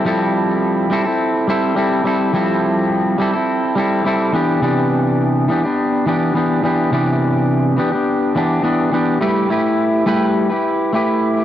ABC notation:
X:1
M:4/4
L:1/16
Q:1/4=105
K:Gmix
V:1 name="Clean electric guitar"
[F,G,CEA]6 [G,CEA] [CEA]3 [G,CEA]2 [G,CEA]2 [G,CEA]2 | [F,G,CEA]6 [G,CEA] [CEA]3 [G,CEA]2 [G,CEA]2 [E,B,DG]2 | [C,E,B,DG]6 [E,B,DG] [B,DG]3 [E,B,DG]2 [E,B,DG]2 [E,B,DG]2 | [C,E,B,DG]6 [E,B,DG] [B,DG]3 [E,B,DG]2 [E,B,DG]2 [E,B,DG]2 |
[G,A,EGB]2 [A,EGB]4 [G,A,EGB]3 [EGB]3 [A,EGB]4 |]